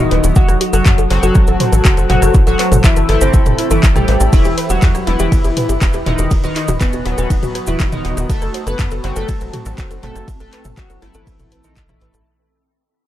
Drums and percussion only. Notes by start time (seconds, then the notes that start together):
0.11 open hi-hat
0.24 closed hi-hat, cabasa
0.36 kick, closed hi-hat, cabasa
0.49 cross-stick, closed hi-hat, cabasa
0.61 open hi-hat
0.73 closed hi-hat, cabasa
0.86 kick, clap, closed hi-hat, cabasa
0.98 closed hi-hat, cabasa
1.10 open hi-hat
1.23 closed hi-hat, cabasa
1.35 kick, cross-stick, closed hi-hat, cabasa
1.47 closed hi-hat, cabasa
1.60 mid tom, open hi-hat
1.73 closed hi-hat, cabasa
1.85 kick, clap, closed hi-hat, cabasa
1.97 closed hi-hat, cabasa
2.10 mid tom, open hi-hat
2.22 cross-stick, closed hi-hat, cabasa
2.34 kick, closed hi-hat, cabasa
2.47 closed hi-hat, cabasa
2.59 clap, open hi-hat
2.72 closed hi-hat, mid tom, cabasa
2.84 kick, clap, closed hi-hat, cabasa
2.96 closed hi-hat, cabasa
3.09 cross-stick, open hi-hat
3.21 closed hi-hat, cabasa
3.34 kick, closed hi-hat, cabasa
3.46 closed hi-hat, mid tom, cabasa
3.58 open hi-hat
3.71 closed hi-hat, cabasa
3.83 kick, clap, closed hi-hat, cabasa
3.96 cross-stick, closed hi-hat, mid tom, cabasa
4.08 open hi-hat
4.20 closed hi-hat, cabasa
4.33 kick, closed hi-hat, ride, cabasa
4.45 closed hi-hat, cabasa
4.58 open hi-hat
4.70 closed hi-hat, cabasa
4.82 kick, clap, closed hi-hat, ride, cabasa
4.95 cross-stick, closed hi-hat, cabasa
5.07 open hi-hat
5.19 closed hi-hat, cabasa
5.32 kick, closed hi-hat, ride, cabasa
5.44 closed hi-hat, cabasa
5.57 mid tom, open hi-hat
5.69 closed hi-hat, cabasa
5.82 kick, cross-stick, clap, closed hi-hat, ride, cabasa
5.93 closed hi-hat, cabasa
6.06 mid tom, open hi-hat
6.18 closed hi-hat, cabasa
6.31 kick, closed hi-hat, ride, cabasa
6.44 closed hi-hat, cabasa
6.56 clap, open hi-hat
6.68 cross-stick, closed hi-hat, mid tom, cabasa
6.81 kick, clap, closed hi-hat, ride, cabasa
6.93 closed hi-hat, cabasa
7.06 open hi-hat
7.18 closed hi-hat, cabasa
7.30 kick, closed hi-hat, ride, cabasa
7.43 closed hi-hat, mid tom, cabasa
7.55 cross-stick, open hi-hat
7.67 closed hi-hat, cabasa
7.80 kick, clap, closed hi-hat, ride, cabasa
7.92 closed hi-hat, mid tom, cabasa
8.05 open hi-hat
8.17 closed hi-hat, cabasa
8.30 kick, closed hi-hat, ride, cabasa
8.42 cross-stick, closed hi-hat, cabasa
8.54 open hi-hat
8.67 closed hi-hat, cabasa
8.79 kick, clap, closed hi-hat, ride, cabasa
8.91 closed hi-hat, cabasa
9.04 open hi-hat
9.16 closed hi-hat, cabasa
9.29 kick, cross-stick, closed hi-hat, ride, cabasa
9.41 closed hi-hat, cabasa
9.53 mid tom, open hi-hat
9.66 closed hi-hat, cabasa
9.78 kick, clap, closed hi-hat, ride, cabasa
9.91 closed hi-hat, cabasa
10.03 mid tom, open hi-hat
10.15 cross-stick, closed hi-hat, cabasa
10.28 kick, closed hi-hat, ride, cabasa
10.40 closed hi-hat, cabasa
10.53 clap, open hi-hat
10.64 closed hi-hat, mid tom, cabasa
10.77 kick, clap, closed hi-hat, ride, cabasa
10.90 closed hi-hat, cabasa
11.02 cross-stick, open hi-hat
11.14 closed hi-hat, cabasa
11.27 kick, closed hi-hat, ride, cabasa
11.39 closed hi-hat, mid tom, cabasa
11.52 open hi-hat
11.64 closed hi-hat, cabasa
11.77 kick, clap, closed hi-hat, ride, cabasa
11.89 cross-stick, closed hi-hat, mid tom, cabasa
12.01 open hi-hat
12.14 closed hi-hat, cabasa